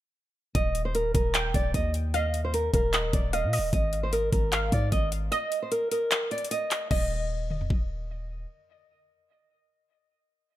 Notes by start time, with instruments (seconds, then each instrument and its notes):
0.55 808-style bass D#1, nylon-string guitar D#5, kick, closed hi-hat
0.75 closed hi-hat
0.85 nylon-string guitar C5
0.95 nylon-string guitar A#4, closed hi-hat
1.14 808-style bass D#1, nylon-string guitar A#4, kick, closed hi-hat
1.34 synth pluck G5, clap, closed hi-hat
1.54 808-style bass D#1, nylon-string guitar D5, kick, closed hi-hat
1.74 808-style bass D#2, nylon-string guitar D#5, kick, closed hi-hat
1.94 closed hi-hat
2.14 nylon-string guitar D#5, synth pluck F5, closed hi-hat
2.34 closed hi-hat
2.45 nylon-string guitar C5
2.54 nylon-string guitar A#4, closed hi-hat
2.74 808-style bass D#1, nylon-string guitar A#4, kick, closed hi-hat
2.93 synth pluck D#5, clap, closed hi-hat
3.13 808-style bass D#1, nylon-string guitar D5, kick, closed hi-hat
3.33 nylon-string guitar D#5, synth pluck F5, closed hi-hat
3.44 808-style bass A#2
3.53 synth pluck D#5, open hi-hat
3.58 808-style bass D#1
3.73 808-style bass G#1, nylon-string guitar D#5, kick, closed hi-hat
3.93 closed hi-hat
4.03 nylon-string guitar C5
4.13 nylon-string guitar A#4, closed hi-hat
4.33 808-style bass G#1, nylon-string guitar A#4, kick, closed hi-hat
4.52 synth pluck F5, clap, closed hi-hat
4.72 808-style bass G#2, nylon-string guitar D5, kick, closed hi-hat
4.92 808-style bass G#1, nylon-string guitar D#5, kick, closed hi-hat
5.12 closed hi-hat
5.32 nylon-string guitar D#5, synth pluck D#5, closed hi-hat
5.52 closed hi-hat
5.62 nylon-string guitar C5
5.71 nylon-string guitar A#4, closed hi-hat
5.91 nylon-string guitar A#4, closed hi-hat
6.11 clap, closed hi-hat
6.31 nylon-string guitar D5, closed hi-hat
6.38 closed hi-hat
6.45 closed hi-hat
6.51 nylon-string guitar D#5, closed hi-hat
6.71 clap, closed hi-hat
6.91 808-style bass D#1, synth pluck D#5, nylon-string guitar D#5, kick, crash
7.50 mid tom
7.61 floor tom
7.70 kick